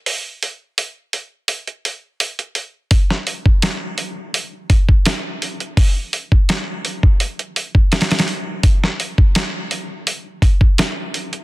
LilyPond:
\new DrumStaff \with { instrumentName = "Drums" } \drummode { \time 4/4 \tempo 4 = 84 hho8 hho8 hho8 hho8 hho16 hh16 hho8 hho16 hh16 hho8 | <hho bd>16 sn16 hho16 bd16 <hho sn>8 hho8 hho8 <hho bd>16 bd16 <hho sn>8 hho16 hh16 | <hho bd>8 hho16 bd16 <hho sn>8 hho16 bd16 hho16 hh16 hho16 bd16 <hho sn>32 <hho sn>32 <hho sn>32 <hho sn>32 hho8 | <hho bd>16 sn16 hho16 bd16 <hho sn>8 hho8 hho8 <hho bd>16 bd16 <hho sn>8 hho16 hh16 | }